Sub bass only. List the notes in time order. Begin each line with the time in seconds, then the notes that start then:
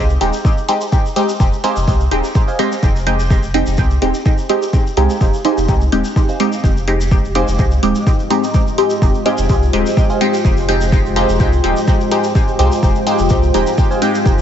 Already playing: C2
0.21 D#1
1.40 F1
1.77 F1
1.88 C2
2.11 D#1
2.83 F1
3.67 F1
3.78 C2
4.02 D#1
4.97 C2
5.21 F1
5.57 F1
5.68 C2
5.92 D#1
6.64 F1
7.48 F1
7.59 C2
7.83 D#1
9.02 F1
9.38 F1
9.50 C2
9.73 D#1
10.45 F1
11.29 F1
11.40 C2
11.64 D#1
12.59 C2
12.83 F1
13.19 F1
13.30 C2
13.54 D#1
14.26 F1